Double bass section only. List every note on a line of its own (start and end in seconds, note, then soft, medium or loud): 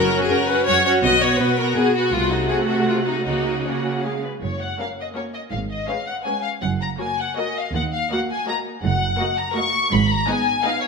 0.00 0.24 F#1 medium
1.04 1.34 B1 medium
2.14 2.48 C2 soft
3.26 3.63 C#2 soft
4.41 4.71 F#1 soft
5.52 5.82 G#1 soft
6.62 6.92 F#1 medium
7.74 8.03 D#2 medium
8.84 9.12 F#1 medium
9.93 10.21 G#1 medium